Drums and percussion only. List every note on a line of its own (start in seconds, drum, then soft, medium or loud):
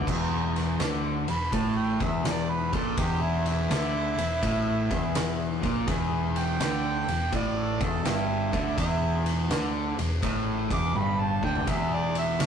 0.07 kick loud
0.07 crash loud
0.56 snare soft
0.56 ride medium
0.80 snare loud
0.80 ride medium
1.28 ride medium
1.52 kick medium
1.52 ride medium
2.00 kick loud
2.00 ride medium
2.25 snare loud
2.25 ride medium
2.73 kick medium
2.73 ride medium
2.97 kick loud
2.97 ride medium
3.46 ride medium
3.71 snare medium
3.71 ride medium
4.18 ride medium
4.43 kick medium
4.43 ride medium
4.91 kick loud
4.91 ride medium
5.15 snare loud
5.15 ride loud
5.63 kick medium
5.63 ride medium
5.88 kick loud
5.88 ride medium
6.36 ride medium
6.60 snare loud
6.60 ride medium
7.08 ride medium
7.32 kick medium
7.32 ride medium
7.81 kick loud
7.81 ride medium
8.05 snare loud
8.05 ride medium
8.53 kick medium
8.53 ride medium
8.78 kick medium
8.78 ride medium
9.26 ride medium
9.50 snare loud
9.50 ride medium
9.99 ride medium
10.23 kick medium
10.23 ride medium
10.71 kick loud
10.71 ride medium
10.96 high tom medium
11.43 kick medium
11.55 floor tom medium
11.67 kick loud
11.67 ride loud
12.15 ride medium
12.40 snare loud
12.40 ride medium